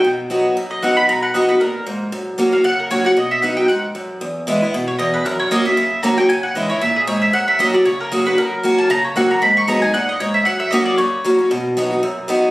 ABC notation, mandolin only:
X:1
M:4/4
L:1/8
Q:"Swing" 1/4=230
K:B
V:1 name="Mandolin"
z4 z d f b | a f d B A2 z2 | z3 ^e f A c f | d e f =g f z3 |
z4 z c d B | A c d e3 a =g | g f d c e G c e | f e d =d c A G B |
A3 =a ^a c f a | b c' a g f d c e | f e d =d c4 | z8 |]